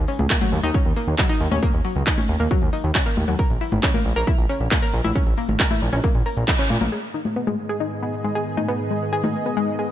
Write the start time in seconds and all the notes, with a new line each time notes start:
0.08 C#4, open hi-hat
0.19 C#2, closed hi-hat, high conga
0.30 A#3, kick, clap, closed hi-hat
0.41 F#3, closed hi-hat, high conga
0.52 D#2, open hi-hat
0.63 D#2 D#4, closed hi-hat
0.74 C#4, kick, closed hi-hat
0.85 D#2, closed hi-hat
0.96 A#3, open hi-hat
1.07 D#2, closed hi-hat
1.18 F#3, kick, clap, closed hi-hat
1.29 D#4, closed hi-hat
1.41 D#2, open hi-hat
1.51 D#2 C#4, high conga
1.63 A#3, kick, closed hi-hat
1.74 D#2, closed hi-hat
1.85 F#3, open hi-hat
1.96 C#2, closed hi-hat
2.07 D#4, kick, clap, closed hi-hat
2.18 C#4, closed hi-hat, high conga
2.29 D#2, open hi-hat
2.40 D#2 A#3, closed hi-hat
2.51 F#3, kick, closed hi-hat
2.62 D#2, closed hi-hat
2.73 D#4, open hi-hat
2.84 D#2, closed hi-hat
2.95 C#4, kick, clap, closed hi-hat
3.06 A#3, closed hi-hat
3.17 D#2, open hi-hat, high conga
3.28 D#2 F#3, closed hi-hat
3.39 A#4, kick, closed hi-hat
3.50 A#1, closed hi-hat
3.61 E4, open hi-hat
3.72 G#1, closed hi-hat, high conga
3.83 C#4, kick, clap, closed hi-hat
3.94 A#3, closed hi-hat, high conga
4.05 A#1, open hi-hat
4.16 A#1 A#4, closed hi-hat
4.27 E4, kick, closed hi-hat
4.38 A#1, closed hi-hat
4.49 C#4, open hi-hat
4.60 A#1, closed hi-hat
4.71 A#3, kick, clap, closed hi-hat
4.82 A#4, closed hi-hat
4.93 A#1, open hi-hat
5.04 A#1 E4, high conga
5.15 C#4, kick, closed hi-hat
5.27 A#1, closed hi-hat
5.38 A#3, open hi-hat
5.49 G#1, closed hi-hat, high conga
5.60 A#4, kick, clap, closed hi-hat
5.71 E4, closed hi-hat, high conga
5.82 A#1, open hi-hat
5.93 A#1 C#4, closed hi-hat
6.04 A#3, kick, closed hi-hat
6.15 A#1, closed hi-hat
6.26 A#4, open hi-hat
6.37 A#1, closed hi-hat
6.48 E4, kick, clap, closed hi-hat
6.59 C#4, closed hi-hat
6.70 A#2, open hi-hat, high conga
6.81 A#1 A#3, closed hi-hat, high conga
6.92 G#2 D#3 B3 G#4 D#5
7.14 D#4
7.25 high conga
7.36 B3
7.47 G#3, high conga
7.69 G#4
7.80 D#4
8.03 B3
8.24 G#3
8.35 G#4
8.57 D#4, high conga
8.69 B3
8.91 G#3
9.13 G#4
9.24 D#4, high conga
9.46 B3
9.57 G#3
9.79 G#4